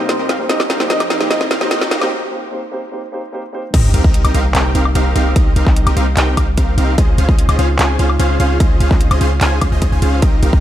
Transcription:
Already playing: C3 G3 A#3 D#4, riser
0.00 C2 A#3 C4 D#4 G4 A#4 C5 D#5
0.09 C5, snare, closed hi-hat
0.19 C2 C4 D#4 G4 A#4 D#5
0.29 C2 C4 D#4 G4 A#4 F5, snare, closed hi-hat
0.38 A#3 C4 D#4 G4 C5
0.49 F3 A#3 C4 D#4 G4 G#4 A#4 C5 D#5, snare, closed hi-hat
0.60 snare, high woodblock
0.70 F1 C4 D#4 G4 A#4 F5, snare, closed hi-hat
0.79 F1 A#3 C4 D#4 G4 A#4 C5 D#5, snare
0.89 F1 A#3 C4 D#4 G4 A#4 C5 D#5, snare, closed hi-hat
1.00 snare, closed hi-hat, high woodblock
1.10 C4 D#4 G4 A#4 F5, snare, closed hi-hat
1.20 A#3 C4 D#4 G4 A#4 C5 D#5, snare
1.30 A#3 C4 D#4 G4 A#4 C5 D#5, snare, closed hi-hat
1.41 snare
1.51 F1 C4 D#4 G4 A#4 F5, snare, closed hi-hat
1.60 F1 A#3 C4 D#4 G4 A#4 C5 D#5, snare
1.70 F1 A#3 C4 D#4 G4 A#4 D#5, snare, closed hi-hat
1.81 snare
1.91 F1 C4 D#4 G4 A#4 F5, snare, closed hi-hat
2.01 F1 A#3 C4 D#4 G4 A#4 C5 D#5, snare, high woodblock
2.11 A#3 C4 D#4 G4 C5
2.31 A#3 C4 D#4 G4 C5
2.51 A#3 C4 D#4 G4 C5
2.71 A#3 C4 D#4 G4 C5
2.92 A#3 C4 D#4 G4 C5
3.12 A#3 C4 D#4 G4 C5
3.32 A#3 C4 D#4 G4 C5
3.53 A#3 C4 D#4 G4 C5
3.74 C2 C3 G3 A#3 C4 D#4 G4 A#4 D#5, kick, closed hi-hat, crash, ride, sub drop
3.94 C2 C4 D#4 G4 A#4 F5, closed hi-hat
4.04 C2 C4 D#4 G4 A#4, kick
4.14 closed hi-hat
4.24 C2 C4 D#4 G4 A#4 D#5, closed hi-hat, high woodblock
4.34 C2 C4 D#4 G4 A#4 F5, closed hi-hat
4.55 C2 C4 D#4 G4 A#4 G5, clap, closed hi-hat, ride
4.75 C2 C4 D#4 G4 A#4 F5, closed hi-hat
4.85 high woodblock
4.95 C2 C4 D#4 G4 A#4 F5, closed hi-hat
5.16 C2 C4 D#4 G4 A#4 F5, closed hi-hat
5.36 C2 C4 D#4 G4 A#4 D#5, kick, closed hi-hat, ride
5.56 C2 C4 D#4 G4 A#4 F5, closed hi-hat
5.67 C2 C4 D#4 D#5, kick, clap
5.76 closed hi-hat
5.87 C2 C4 D#4 G4 A#4 D#5, closed hi-hat, high woodblock
5.97 C2 C4 D#4 G4 A#4 F5, closed hi-hat
6.17 C2 C4 D#4 G4 A#4 G5, clap, closed hi-hat, ride
6.37 C2 C4 D#4 G4 A#4 F5, kick, closed hi-hat, high woodblock
6.57 C2 C4 D#4 G4 A#4 F5, kick, closed hi-hat
6.78 C2 C4 D#4 G4 A#4 F5, closed hi-hat
6.98 C#2 C#3 C4 C#4 D#4 F4 G#4 C5 D#5, kick, closed hi-hat, ride
7.18 C#2 C#4 F4 G#4 C5 F5, closed hi-hat
7.29 C#2 F4 G#4 C5 D#5, kick
7.39 closed hi-hat
7.49 C#2 C#4 F4 G#4 C5 D#5, closed hi-hat, high woodblock
7.59 C#2 C#4 F4 G#4 C5 F5, closed hi-hat
7.79 C#2 C#4 F4 G#4 C5 G#5, clap, closed hi-hat, ride
7.99 C#2 C#4 F4 G#4 C5 F5, closed hi-hat
8.10 high woodblock
8.20 C#2 C#4 F4 G#4 C5 F5, closed hi-hat
8.40 C#2 C#4 F4 G#4 C5 F5, closed hi-hat
8.60 C#2 C#4 F4 G#4 C5 D#5, kick, closed hi-hat, ride
8.80 C#2 C#4 F4 G#4 C5 F5, closed hi-hat
8.91 C#2 C#4 F4 G#4, kick, clap
9.01 closed hi-hat
9.11 C#2 C#4 F4 G#4 C5 D#5, closed hi-hat, high woodblock
9.21 C#2 C#4 F4 G#4 C5 F5, closed hi-hat
9.41 C#2 C#4 F4 G#4 C5 G#5, clap, closed hi-hat, ride
9.61 C#2 C#4 F4 G#4 C5 F5, kick, closed hi-hat, high woodblock
9.72 C#2 C#4 F4 G#4 C5 D#5
9.82 C#2 C#4 F4 G#4 C5 D#5, kick, closed hi-hat
9.92 C#2 C#4 F4 G#4 C5 G#5
10.02 C#2 C#4 F4 G#4 C5 F5, closed hi-hat
10.22 C2 C3 G3 A#3 C4 D#4 G4 A#4 D#5, kick, closed hi-hat, ride
10.43 C2 C4 D#4 G4 A#4 F5, closed hi-hat
10.53 C2 C4 D#4 G4 A#4, kick

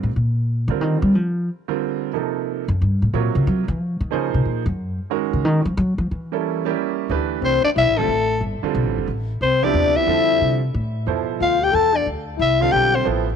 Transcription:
0.03 A2
0.16 A#2
0.68 D3 G3 C4 F4 A#4
0.81 D#3
1.02 G3
1.15 F3
1.68 D3 G3 C4 F4 A#4
2.13 C3 F3 A#3 D#4 A4
2.68 F#2
2.82 G2
3.02 A2
3.13 A#2 C3 F#3 F4 A#4 C#5
3.35 C#3
3.47 F#3
3.68 E3
3.80 F3
4.00 D#3
4.11 C#3 F3 A#3 D#4 G#4 C5
4.34 C3
4.45 A#2
4.66 F#2
5.10 D#3 G#3 C#4 F#4 A#4
5.33 C#3
5.45 D#3
5.65 F3
5.77 F#3
5.98 F3
6.11 E3
6.32 G3 A#3 C#4 E4 A4
6.65 G3 A#3 C#4 E4 G4
7.09 D2 E3 A3 D4 G4 B4
7.42 C2 C4 C5
7.64 D4 D5, muted upright bass stroke
7.76 B1 E4 E5
7.87 A1
7.97 F1 D3 G3 A3 C4 F4 A4
8.07 A1
8.41 G1
8.62 D3 G3 C4 F4 A4, muted upright bass stroke
8.74 B1
8.85 A1
8.98 F1
9.07 A1
9.41 C2 C4 C5
9.63 C3 F3 B3 D4 E4 G4 D5
9.74 E2
9.86 D2
9.96 C2 E4 E5
10.07 F2 D3 F3 G3 C4 A4
10.41 C3
10.74 A2
11.06 F2 B2 F3 E4 A4 C5
11.40 D2 F4 F5
11.63 G4 G5
11.72 E2 A4 A5
11.94 D4 D5
12.06 D2
12.38 C2 E4 E5
12.60 D3 G3 C4 F4 A4 F5
12.71 B1 G4 G5
12.95 C4 C5
13.05 A1 F3 B3 E4 A4 C5

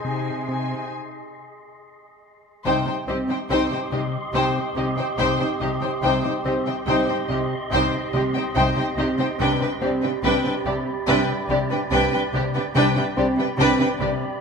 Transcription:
Already playing: G#4 D#5 C6
0.04 C3 D#4 C5 G#5
0.47 C3 D#4 C5 G#5
2.64 C2 C3 D#4 G4 C5 D#5 G5 C6
2.86 C3 D#4 C5 G5
3.08 C2 C3 C4 D#4 G4 D#5
3.29 C3 D#4 C5 G5
3.49 C2 C3 C4 D#4 C5 G5
3.71 C3 D#4 C5 G5
3.91 C2 C3 D#4 G4 D#5
4.33 C2 C3 D#4 C5 G5
4.75 C2 C3 D#4 G4 D#5
4.97 C3 D#4 C5 G5
5.18 C2 C3 D#4 C5 G5
5.39 C3 D#4 C5 G5
5.60 C2 C3 D#4 G4 D#5
5.81 C3 D#4 C5 G5
6.02 C2 C3 D#4 G4 C5 D#5 G5 C6
6.24 C3 D#4 C5 G5
6.45 C2 C3 C4 D#4 G4 D#5
6.66 C3 D#4 C5 G5
6.87 C2 C3 C4 D#4 C5 G5
7.08 C3 D#4 C5 G5
7.29 C2 C3 D#4 G4 D#5
7.71 C2 C3 D#4 C5 G5
8.13 C2 C3 D#4 G4 D#5
8.34 C3 D#4 C5 G5
8.55 C2 C3 D#4 C5 G5
8.76 C3 D#4 C5 G5
8.97 C2 C3 D#4 G4 D#5
9.18 C3 D#4 C5 G5
9.39 C2 C3 D4 G4 B4 D5 G5 B5
9.61 C3 D4 B4 G5
9.81 C2 C3 C4 D4 G4 D5
10.01 C3 D4 B4 G5
10.23 C2 C3 C4 D4 B4 G5
10.43 C3 D4 B4 G5
10.65 C2 C3 D4 G4 D5
11.07 C2 C3 D4 B4 G5
11.49 C2 C3 D4 G4 D5
11.70 C3 D4 B4 G5
11.90 C2 C3 D4 B4 G5
12.12 C3 D4 B4 G5
12.33 C2 C3 D4 G4 D5
12.54 C3 D4 B4 G5
12.75 C2 C3 D4 G4 B4 D5 G5 B5
12.96 C3 D4 B4 G5
13.17 C2 C3 C4 D4 G4 D5
13.37 C3 D4 B4 G5
13.58 C2 C3 C4 D4 B4 G5
13.79 C3 D4 B4 G5
13.99 C2 C3 D4 G4 D5

